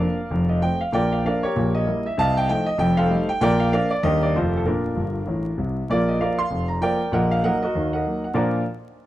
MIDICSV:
0, 0, Header, 1, 2, 480
1, 0, Start_track
1, 0, Key_signature, -2, "major"
1, 0, Tempo, 310078
1, 1438, Time_signature, 4, 2, 24, 8
1, 14031, End_track
2, 0, Start_track
2, 0, Title_t, "Grand piano"
2, 0, Program_c, 0, 0
2, 0, Control_c, 0, 64, 127
2, 0, Note_on_c, 0, 53, 40
2, 0, Note_on_c, 0, 62, 42
2, 0, Note_on_c, 0, 70, 73
2, 0, Note_on_c, 0, 74, 73
2, 0, Note_on_c, 0, 77, 93
2, 2, Note_on_c, 0, 58, 39
2, 17, Control_c, 0, 64, 0
2, 252, Note_off_c, 0, 53, 0
2, 262, Note_off_c, 0, 62, 0
2, 265, Note_off_c, 0, 58, 0
2, 472, Note_on_c, 0, 29, 61
2, 482, Note_on_c, 0, 41, 67
2, 701, Note_off_c, 0, 70, 0
2, 702, Note_off_c, 0, 74, 0
2, 735, Control_c, 0, 64, 127
2, 755, Note_off_c, 0, 77, 0
2, 761, Note_on_c, 0, 75, 68
2, 883, Note_off_c, 0, 29, 0
2, 888, Note_off_c, 0, 41, 0
2, 948, Note_on_c, 0, 53, 39
2, 955, Note_on_c, 0, 57, 38
2, 960, Note_off_c, 0, 75, 0
2, 962, Note_on_c, 0, 79, 88
2, 963, Note_on_c, 0, 60, 41
2, 979, Control_c, 0, 64, 0
2, 1214, Note_off_c, 0, 53, 0
2, 1220, Note_off_c, 0, 57, 0
2, 1226, Note_off_c, 0, 60, 0
2, 1241, Note_off_c, 0, 79, 0
2, 1249, Note_on_c, 0, 77, 76
2, 1428, Note_on_c, 0, 34, 63
2, 1430, Note_on_c, 0, 46, 73
2, 1443, Note_off_c, 0, 77, 0
2, 1444, Note_on_c, 0, 79, 100
2, 1461, Note_on_c, 0, 74, 75
2, 1465, Note_on_c, 0, 70, 74
2, 1701, Control_c, 0, 64, 127
2, 1711, Note_off_c, 0, 74, 0
2, 1713, Note_off_c, 0, 70, 0
2, 1721, Note_off_c, 0, 79, 0
2, 1738, Note_on_c, 0, 77, 73
2, 1839, Note_off_c, 0, 34, 0
2, 1841, Note_off_c, 0, 46, 0
2, 1925, Note_off_c, 0, 77, 0
2, 1930, Note_on_c, 0, 53, 37
2, 1931, Control_c, 0, 64, 0
2, 1939, Note_on_c, 0, 62, 45
2, 1941, Note_on_c, 0, 58, 42
2, 1948, Note_on_c, 0, 77, 83
2, 1963, Note_on_c, 0, 74, 61
2, 1967, Note_on_c, 0, 70, 62
2, 2190, Note_off_c, 0, 53, 0
2, 2196, Note_off_c, 0, 62, 0
2, 2198, Note_off_c, 0, 58, 0
2, 2202, Note_off_c, 0, 74, 0
2, 2204, Note_off_c, 0, 70, 0
2, 2213, Note_off_c, 0, 77, 0
2, 2216, Note_on_c, 0, 73, 87
2, 2237, Note_on_c, 0, 70, 59
2, 2240, Note_on_c, 0, 67, 60
2, 2410, Note_on_c, 0, 46, 72
2, 2416, Note_on_c, 0, 34, 63
2, 2658, Control_c, 0, 64, 127
2, 2664, Note_off_c, 0, 70, 0
2, 2665, Note_off_c, 0, 67, 0
2, 2685, Note_off_c, 0, 73, 0
2, 2702, Note_on_c, 0, 75, 82
2, 2811, Note_off_c, 0, 46, 0
2, 2815, Note_off_c, 0, 34, 0
2, 2890, Control_c, 0, 64, 0
2, 2896, Note_on_c, 0, 55, 42
2, 2898, Note_on_c, 0, 58, 47
2, 2900, Note_on_c, 0, 64, 47
2, 3154, Note_off_c, 0, 55, 0
2, 3155, Note_off_c, 0, 58, 0
2, 3156, Note_off_c, 0, 64, 0
2, 3168, Note_off_c, 0, 75, 0
2, 3194, Note_on_c, 0, 76, 80
2, 3364, Note_on_c, 0, 48, 75
2, 3369, Note_on_c, 0, 36, 71
2, 3373, Note_off_c, 0, 76, 0
2, 3387, Note_on_c, 0, 81, 115
2, 3398, Note_on_c, 0, 75, 79
2, 3407, Note_on_c, 0, 77, 86
2, 3598, Control_c, 0, 64, 127
2, 3638, Note_off_c, 0, 75, 0
2, 3643, Note_off_c, 0, 77, 0
2, 3651, Note_off_c, 0, 81, 0
2, 3671, Note_on_c, 0, 79, 105
2, 3767, Note_off_c, 0, 48, 0
2, 3770, Note_off_c, 0, 36, 0
2, 3835, Note_off_c, 0, 79, 0
2, 3841, Note_on_c, 0, 53, 56
2, 3847, Note_on_c, 0, 57, 51
2, 3857, Control_c, 0, 64, 0
2, 3858, Note_on_c, 0, 79, 108
2, 3859, Note_on_c, 0, 63, 58
2, 4102, Note_off_c, 0, 53, 0
2, 4107, Note_off_c, 0, 57, 0
2, 4116, Note_off_c, 0, 63, 0
2, 4123, Note_on_c, 0, 75, 95
2, 4126, Note_off_c, 0, 79, 0
2, 4304, Note_on_c, 0, 29, 81
2, 4305, Note_on_c, 0, 41, 85
2, 4317, Note_off_c, 0, 75, 0
2, 4320, Note_on_c, 0, 79, 107
2, 4563, Control_c, 0, 64, 127
2, 4596, Note_off_c, 0, 79, 0
2, 4599, Note_on_c, 0, 77, 102
2, 4620, Note_on_c, 0, 72, 76
2, 4624, Note_on_c, 0, 69, 75
2, 4715, Note_off_c, 0, 29, 0
2, 4715, Note_off_c, 0, 41, 0
2, 4789, Note_on_c, 0, 55, 51
2, 4790, Note_on_c, 0, 57, 54
2, 4797, Note_on_c, 0, 63, 64
2, 4813, Control_c, 0, 64, 0
2, 5053, Note_off_c, 0, 55, 0
2, 5053, Note_off_c, 0, 72, 0
2, 5054, Note_off_c, 0, 57, 0
2, 5055, Note_off_c, 0, 69, 0
2, 5059, Note_off_c, 0, 63, 0
2, 5075, Note_off_c, 0, 77, 0
2, 5092, Note_on_c, 0, 79, 102
2, 5259, Note_off_c, 0, 79, 0
2, 5277, Note_on_c, 0, 34, 80
2, 5278, Note_on_c, 0, 46, 92
2, 5283, Note_on_c, 0, 79, 122
2, 5303, Note_on_c, 0, 70, 97
2, 5307, Note_on_c, 0, 74, 95
2, 5522, Control_c, 0, 64, 127
2, 5549, Note_off_c, 0, 70, 0
2, 5551, Note_off_c, 0, 74, 0
2, 5557, Note_off_c, 0, 79, 0
2, 5569, Note_on_c, 0, 77, 86
2, 5682, Note_off_c, 0, 34, 0
2, 5683, Note_off_c, 0, 46, 0
2, 5751, Note_off_c, 0, 77, 0
2, 5761, Note_on_c, 0, 53, 48
2, 5762, Note_on_c, 0, 58, 50
2, 5770, Control_c, 0, 64, 0
2, 5770, Note_on_c, 0, 62, 50
2, 5774, Note_on_c, 0, 77, 106
2, 5784, Note_on_c, 0, 70, 71
2, 5794, Note_on_c, 0, 74, 74
2, 6021, Note_off_c, 0, 74, 0
2, 6022, Note_off_c, 0, 53, 0
2, 6023, Note_off_c, 0, 58, 0
2, 6029, Note_off_c, 0, 62, 0
2, 6029, Note_off_c, 0, 70, 0
2, 6043, Note_off_c, 0, 77, 0
2, 6044, Note_on_c, 0, 74, 91
2, 6233, Note_on_c, 0, 51, 66
2, 6237, Note_off_c, 0, 74, 0
2, 6237, Note_on_c, 0, 55, 44
2, 6239, Note_on_c, 0, 39, 85
2, 6243, Note_on_c, 0, 75, 105
2, 6252, Note_on_c, 0, 58, 47
2, 6256, Note_on_c, 0, 62, 46
2, 6266, Note_on_c, 0, 70, 72
2, 6273, Note_on_c, 0, 67, 73
2, 6483, Control_c, 0, 64, 127
2, 6499, Note_off_c, 0, 55, 0
2, 6510, Note_off_c, 0, 58, 0
2, 6510, Note_off_c, 0, 70, 0
2, 6513, Note_off_c, 0, 62, 0
2, 6514, Note_off_c, 0, 67, 0
2, 6517, Note_off_c, 0, 75, 0
2, 6540, Note_on_c, 0, 74, 85
2, 6640, Note_off_c, 0, 51, 0
2, 6643, Note_off_c, 0, 39, 0
2, 6724, Note_off_c, 0, 74, 0
2, 6730, Control_c, 0, 64, 0
2, 6739, Note_on_c, 0, 41, 69
2, 6739, Note_on_c, 0, 57, 41
2, 6740, Note_on_c, 0, 53, 36
2, 6744, Note_on_c, 0, 29, 61
2, 6751, Note_on_c, 0, 72, 84
2, 6770, Note_on_c, 0, 65, 64
2, 6778, Note_on_c, 0, 69, 61
2, 6960, Control_c, 0, 64, 127
2, 6995, Note_off_c, 0, 53, 0
2, 6995, Note_off_c, 0, 57, 0
2, 7040, Note_off_c, 0, 65, 0
2, 7044, Note_off_c, 0, 69, 0
2, 7050, Note_off_c, 0, 72, 0
2, 7069, Note_on_c, 0, 69, 73
2, 7134, Note_off_c, 0, 41, 0
2, 7137, Note_off_c, 0, 29, 0
2, 7203, Note_on_c, 0, 46, 58
2, 7209, Note_off_c, 0, 69, 0
2, 7211, Control_c, 0, 64, 0
2, 7215, Note_on_c, 0, 70, 67
2, 7235, Note_on_c, 0, 62, 53
2, 7239, Note_on_c, 0, 65, 56
2, 7441, Control_c, 0, 64, 127
2, 7581, Note_off_c, 0, 46, 0
2, 7671, Note_on_c, 0, 43, 53
2, 7674, Note_on_c, 0, 31, 49
2, 7690, Control_c, 0, 64, 0
2, 8031, Note_off_c, 0, 43, 0
2, 8032, Note_off_c, 0, 31, 0
2, 8148, Note_on_c, 0, 33, 53
2, 8148, Note_on_c, 0, 45, 47
2, 8509, Note_off_c, 0, 33, 0
2, 8509, Note_off_c, 0, 45, 0
2, 8591, Note_off_c, 0, 62, 0
2, 8593, Note_off_c, 0, 65, 0
2, 8630, Note_on_c, 0, 48, 53
2, 8638, Note_on_c, 0, 36, 56
2, 8643, Note_off_c, 0, 70, 0
2, 8990, Note_off_c, 0, 48, 0
2, 8995, Note_off_c, 0, 36, 0
2, 9127, Note_on_c, 0, 34, 66
2, 9127, Note_on_c, 0, 46, 68
2, 9142, Note_on_c, 0, 74, 93
2, 9159, Note_on_c, 0, 65, 60
2, 9163, Note_on_c, 0, 70, 65
2, 9373, Control_c, 0, 64, 127
2, 9398, Note_off_c, 0, 65, 0
2, 9400, Note_off_c, 0, 70, 0
2, 9407, Note_off_c, 0, 74, 0
2, 9421, Note_on_c, 0, 75, 78
2, 9528, Note_off_c, 0, 34, 0
2, 9529, Note_off_c, 0, 46, 0
2, 9596, Note_on_c, 0, 58, 38
2, 9597, Note_on_c, 0, 53, 35
2, 9605, Note_off_c, 0, 75, 0
2, 9606, Control_c, 0, 64, 0
2, 9608, Note_on_c, 0, 77, 81
2, 9614, Note_on_c, 0, 65, 42
2, 9625, Note_on_c, 0, 70, 66
2, 9625, Note_on_c, 0, 74, 64
2, 9859, Note_off_c, 0, 58, 0
2, 9860, Note_off_c, 0, 53, 0
2, 9870, Note_off_c, 0, 74, 0
2, 9871, Note_off_c, 0, 70, 0
2, 9872, Note_off_c, 0, 65, 0
2, 9881, Note_off_c, 0, 77, 0
2, 9884, Note_on_c, 0, 84, 94
2, 9908, Note_on_c, 0, 77, 66
2, 10069, Note_on_c, 0, 41, 55
2, 10073, Note_on_c, 0, 29, 61
2, 10339, Note_off_c, 0, 77, 0
2, 10344, Note_on_c, 0, 82, 74
2, 10359, Note_off_c, 0, 84, 0
2, 10479, Note_off_c, 0, 41, 0
2, 10481, Note_off_c, 0, 29, 0
2, 10542, Note_on_c, 0, 53, 46
2, 10548, Note_off_c, 0, 82, 0
2, 10549, Note_on_c, 0, 58, 45
2, 10551, Note_on_c, 0, 65, 48
2, 10554, Note_on_c, 0, 79, 101
2, 10570, Note_on_c, 0, 74, 72
2, 10581, Note_on_c, 0, 70, 68
2, 10810, Note_off_c, 0, 53, 0
2, 10814, Note_off_c, 0, 58, 0
2, 10816, Note_off_c, 0, 65, 0
2, 11009, Note_off_c, 0, 74, 0
2, 11015, Note_off_c, 0, 70, 0
2, 11016, Note_on_c, 0, 34, 73
2, 11026, Note_on_c, 0, 46, 78
2, 11035, Note_off_c, 0, 79, 0
2, 11038, Note_on_c, 0, 78, 90
2, 11050, Note_on_c, 0, 70, 70
2, 11055, Note_on_c, 0, 75, 67
2, 11298, Control_c, 0, 64, 127
2, 11304, Note_off_c, 0, 70, 0
2, 11307, Note_off_c, 0, 75, 0
2, 11317, Note_off_c, 0, 78, 0
2, 11322, Note_on_c, 0, 77, 87
2, 11433, Note_off_c, 0, 34, 0
2, 11438, Note_off_c, 0, 46, 0
2, 11505, Note_on_c, 0, 54, 46
2, 11505, Note_on_c, 0, 58, 44
2, 11508, Note_on_c, 0, 63, 48
2, 11516, Note_on_c, 0, 78, 96
2, 11518, Note_off_c, 0, 77, 0
2, 11528, Control_c, 0, 64, 0
2, 11535, Note_on_c, 0, 75, 75
2, 11537, Note_on_c, 0, 70, 71
2, 11772, Note_off_c, 0, 54, 0
2, 11773, Note_off_c, 0, 58, 0
2, 11775, Note_off_c, 0, 63, 0
2, 11782, Note_off_c, 0, 75, 0
2, 11789, Note_off_c, 0, 70, 0
2, 11797, Note_off_c, 0, 78, 0
2, 11805, Note_on_c, 0, 75, 82
2, 11832, Note_on_c, 0, 66, 64
2, 11835, Note_on_c, 0, 70, 61
2, 11993, Note_on_c, 0, 39, 62
2, 11994, Note_on_c, 0, 51, 55
2, 12263, Note_off_c, 0, 66, 0
2, 12265, Note_off_c, 0, 70, 0
2, 12278, Note_on_c, 0, 78, 72
2, 12282, Note_off_c, 0, 75, 0
2, 12303, Note_on_c, 0, 70, 54
2, 12309, Note_on_c, 0, 75, 59
2, 12404, Note_off_c, 0, 39, 0
2, 12404, Note_off_c, 0, 51, 0
2, 12479, Note_on_c, 0, 54, 39
2, 12489, Note_on_c, 0, 58, 36
2, 12492, Note_on_c, 0, 63, 42
2, 12735, Note_off_c, 0, 78, 0
2, 12739, Note_off_c, 0, 70, 0
2, 12742, Note_off_c, 0, 75, 0
2, 12743, Note_off_c, 0, 54, 0
2, 12751, Note_off_c, 0, 58, 0
2, 12753, Note_off_c, 0, 63, 0
2, 12758, Note_on_c, 0, 78, 58
2, 12907, Note_on_c, 0, 53, 67
2, 12910, Note_on_c, 0, 46, 85
2, 12911, Note_on_c, 0, 62, 68
2, 12918, Note_on_c, 0, 70, 66
2, 12921, Note_on_c, 0, 65, 70
2, 12924, Note_on_c, 0, 74, 66
2, 12943, Note_on_c, 0, 82, 55
2, 12958, Note_off_c, 0, 78, 0
2, 13148, Control_c, 0, 64, 127
2, 13230, Note_off_c, 0, 53, 0
2, 13232, Note_off_c, 0, 46, 0
2, 13232, Note_off_c, 0, 62, 0
2, 13236, Note_off_c, 0, 70, 0
2, 13238, Note_off_c, 0, 65, 0
2, 13239, Note_off_c, 0, 74, 0
2, 13250, Note_off_c, 0, 82, 0
2, 13324, Control_c, 0, 64, 0
2, 14031, End_track
0, 0, End_of_file